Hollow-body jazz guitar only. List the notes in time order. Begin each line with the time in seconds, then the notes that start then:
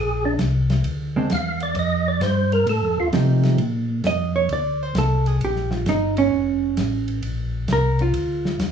1.16 G#3 C4 D4
3.13 F3 A3 D#4 G4
4.07 D#5
4.36 C#5
4.53 D5
4.83 C5
4.98 A4
5.27 G#4
5.45 G4
5.73 F4
5.89 D#4
6.18 C#4
7.73 A#4
8.02 F4